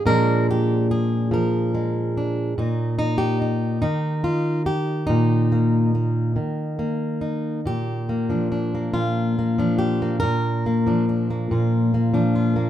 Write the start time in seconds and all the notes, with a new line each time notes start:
0.06 A#2 F3 G#3 D4 A#4
0.51 G4
0.91 G#4
1.31 F3 A#4
1.75 G#3
2.17 D4
2.58 A#2 D#4
2.99 D#4
3.18 G4
3.42 D#4
3.82 D#3 D#4
4.24 F4
4.66 G4
5.07 A#2 D#4
5.52 A#3
5.95 A#3
6.36 D#3
6.79 A#3
7.21 D#4
7.66 A#2 G4
8.09 A#3
8.29 F3 D4
8.52 D4
8.75 A#3
8.94 A#2 F4
9.39 A#3
9.58 F3 D4
9.79 G4
10.02 A#3
10.20 A#2 A#4
10.66 A#3
10.87 F3 D4
11.09 D4
11.30 A#3
11.51 A#2 F4
11.94 A#3
12.14 F3 D4
12.35 F4
12.56 A#3